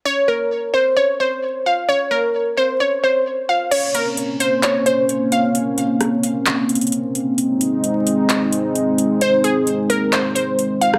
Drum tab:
CC |--------------------------------|--------------------------------|x-------------------------------|--------------------------------|
HH |--------------------------------|--------------------------------|x---x---x---x---x---x---x---x---|x---x---x---x---x---xxxxx---x---|
CP |--------------------------------|--------------------------------|----------------x---------------|----------------x---------------|
SD |--------------------------------|--------------------------------|--------------------------------|--------r-----------------------|

CC |--------------------------------|--------------------------------|
HH |x---x---x---x---x---x---x---x---|x---x---x---x---x---x---x---x---|
CP |----------------x---------------|----------------x---------------|
SD |--------------------------------|------------------------------r-|